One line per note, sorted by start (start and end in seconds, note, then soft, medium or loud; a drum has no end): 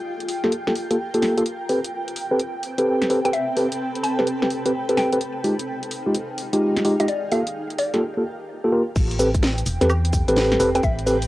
0.00 1.46 F4 medium
0.00 1.46 A#4 medium
0.00 1.45 G5 medium
0.00 7.85 G5 medium
0.20 closed hi-hat soft
0.29 open hi-hat medium
0.44 0.52 A#3 medium
0.44 0.52 F4 medium
0.44 0.52 G4 medium
0.44 0.52 A4 loud
0.44 snare soft
0.52 closed hi-hat medium
0.67 0.72 A#3 medium
0.67 0.72 F4 medium
0.67 0.72 G4 medium
0.67 0.72 A4 medium
0.67 snare medium
0.76 open hi-hat medium
0.91 0.96 A#3 medium
0.91 0.96 F4 medium
0.91 0.96 G4 medium
0.91 0.96 A4 loud
0.91 closed hi-hat medium
1.14 1.34 A#3 medium
1.14 1.34 F4 medium
1.14 1.34 G4 medium
1.14 1.34 A4 loud
1.14 closed hi-hat soft
1.22 snare medium
1.22 open hi-hat medium
1.38 1.42 A#3 medium
1.38 1.42 F4 medium
1.38 1.43 G4 medium
1.38 1.43 A4 loud
1.38 closed hi-hat medium
1.46 5.97 C4 medium
1.46 8.02 G5 medium
1.46 closed hi-hat medium
1.68 1.78 C4 medium
1.68 1.78 G4 medium
1.68 5.21 A4 medium
1.68 1.78 A4 medium
1.68 1.78 B4 medium
1.68 open hi-hat medium
1.76 5.21 B4 medium
1.84 closed hi-hat medium
2.08 closed hi-hat soft
2.16 open hi-hat medium
2.31 2.39 C4 medium
2.31 2.39 G4 medium
2.31 2.39 A4 medium
2.31 2.39 B4 loud
2.40 closed hi-hat medium
2.63 open hi-hat medium
2.78 3.08 C4 medium
2.78 3.08 G4 medium
2.78 3.08 A4 medium
2.78 3.08 B4 medium
2.78 closed hi-hat medium
3.02 snare medium
3.02 closed hi-hat soft
3.10 3.19 C4 medium
3.10 3.19 G4 medium
3.10 3.19 A4 medium
3.10 3.19 B4 medium
3.10 open hi-hat loud
3.25 3.30 C4 medium
3.25 3.30 G4 medium
3.25 3.30 A4 medium
3.25 3.30 B4 loud
3.25 3.32 G5 medium
3.25 closed hi-hat medium
3.33 3.50 E5 medium
3.33 closed hi-hat medium
3.57 3.66 C4 medium
3.57 3.66 G4 medium
3.57 3.66 A4 medium
3.57 3.66 B4 loud
3.57 open hi-hat medium
3.72 closed hi-hat medium
3.95 closed hi-hat soft
4.03 4.42 A5 medium
4.03 open hi-hat loud
4.19 4.27 C4 medium
4.19 4.27 G4 medium
4.19 4.27 A4 medium
4.19 4.27 B4 loud
4.19 snare soft
4.27 closed hi-hat medium
4.42 4.47 C4 medium
4.42 4.47 G4 medium
4.42 4.47 A4 medium
4.42 4.47 B4 medium
4.42 snare medium
4.50 open hi-hat loud
4.66 4.71 C4 medium
4.66 4.71 G4 medium
4.66 4.71 A4 medium
4.66 4.71 B4 loud
4.66 closed hi-hat medium
4.89 5.09 C4 medium
4.89 5.09 G4 medium
4.89 5.09 A4 medium
4.89 5.09 B4 loud
4.89 closed hi-hat medium
4.97 5.27 G5 loud
4.97 snare medium
4.97 open hi-hat medium
5.12 5.18 C4 medium
5.12 5.18 G4 medium
5.12 5.18 A4 medium
5.12 5.18 B4 loud
5.12 closed hi-hat medium
5.21 7.08 D#4 medium
5.21 closed hi-hat medium
5.36 7.08 G#4 medium
5.36 8.02 F5 medium
5.44 5.53 G#3 medium
5.44 5.53 D#4 medium
5.44 5.53 F4 medium
5.44 5.53 G4 medium
5.44 open hi-hat loud
5.59 closed hi-hat medium
5.83 closed hi-hat soft
5.91 open hi-hat loud
6.06 6.14 G#3 medium
6.06 6.14 D#4 medium
6.06 6.14 F4 medium
6.06 6.14 G4 medium
6.15 closed hi-hat medium
6.38 open hi-hat loud
6.53 6.83 G#3 medium
6.53 6.83 D#4 medium
6.53 6.83 F4 medium
6.53 6.83 G4 loud
6.53 closed hi-hat medium
6.77 snare medium
6.77 closed hi-hat medium
6.85 6.94 G#3 medium
6.85 6.94 D#4 medium
6.85 6.94 F4 medium
6.85 6.94 G4 loud
6.85 open hi-hat loud
7.00 7.05 G#3 medium
7.00 7.05 D#4 medium
7.00 7.05 F4 medium
7.00 7.05 G4 loud
7.00 7.07 D#5 medium
7.00 closed hi-hat medium
7.08 7.25 D5 medium
7.08 closed hi-hat medium
7.32 7.41 A#3 medium
7.32 7.41 F4 medium
7.32 7.41 G4 medium
7.32 7.41 A4 loud
7.32 7.48 F5 medium
7.32 open hi-hat loud
7.47 closed hi-hat medium
7.70 closed hi-hat soft
7.79 7.95 D5 medium
7.79 open hi-hat loud
7.94 8.02 A#3 medium
7.94 8.02 F4 medium
7.94 8.02 G4 medium
7.94 8.02 A4 loud
7.94 snare soft
7.94 closed hi-hat soft
8.17 8.22 A#3 medium
8.17 8.22 F4 medium
8.17 8.22 G4 medium
8.17 8.22 A4 medium
8.64 8.71 A#3 medium
8.64 8.71 F4 medium
8.64 8.71 G4 medium
8.64 8.71 A4 loud
8.72 8.81 A#3 medium
8.72 8.81 F4 medium
8.72 8.81 G4 medium
8.72 8.81 A#4 medium
8.96 9.63 A1 loud
8.96 11.27 C4 medium
8.96 11.27 G5 medium
8.96 kick loud
8.96 crash loud
8.96 cabasa soft
9.11 closed hi-hat soft
9.19 9.28 C4 medium
9.19 9.28 G4 medium
9.19 9.28 A4 medium
9.19 9.28 B4 medium
9.19 open hi-hat loud
9.19 cabasa medium
9.25 11.27 B4 medium
9.34 kick loud
9.34 closed hi-hat medium
9.34 cabasa soft
9.43 11.27 G5 medium
9.43 snare loud
9.43 cabasa soft
9.58 closed hi-hat medium
9.58 cabasa soft
9.66 9.78 E1 loud
9.66 open hi-hat loud
9.66 cabasa medium
9.81 10.23 E2 medium
9.81 9.89 C4 medium
9.81 9.89 G4 medium
9.81 9.89 A4 medium
9.81 9.89 B4 loud
9.81 snare soft
9.81 closed hi-hat medium
9.81 cabasa soft
9.90 cabasa soft
9.90 high woodblock medium
10.05 closed hi-hat medium
10.13 kick loud
10.13 open hi-hat loud
10.13 cabasa medium
10.28 10.57 A1 medium
10.28 10.58 C4 loud
10.28 10.58 G4 medium
10.28 10.58 A4 medium
10.28 10.58 B4 loud
10.28 closed hi-hat medium
10.28 cabasa soft
10.36 snare loud
10.36 cabasa soft
10.52 snare medium
10.52 closed hi-hat soft
10.60 10.80 E1 medium
10.60 10.69 C4 medium
10.60 10.69 G4 medium
10.60 10.69 A4 medium
10.60 10.69 B4 loud
10.60 open hi-hat loud
10.60 cabasa medium
10.75 10.80 C4 loud
10.75 10.80 G4 medium
10.75 10.80 A4 medium
10.75 10.80 B4 loud
10.75 10.82 G5 medium
10.75 closed hi-hat medium
10.75 cabasa soft
10.83 11.27 A1 medium
10.83 11.00 E5 medium
10.83 kick loud
10.83 cabasa soft
10.99 closed hi-hat soft
11.07 11.16 C4 medium
11.07 11.16 G4 medium
11.07 11.16 A4 medium
11.07 11.16 B4 loud
11.07 open hi-hat loud
11.07 cabasa medium
11.22 closed hi-hat medium
11.22 cabasa soft